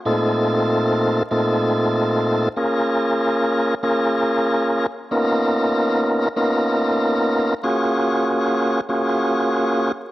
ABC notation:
X:1
M:4/4
L:1/8
Q:"Swing 16ths" 1/4=95
K:Bbm
V:1 name="Tonewheel organ"
[B,,=A,CEF=A]4 [B,,A,CEFA]4 | [B,DFAB]4 [B,DFAB]3 z | [B,_CDEFB]4 [B,CDEFB]4 | [B,DFGA]4 [B,DFGA]3 z |]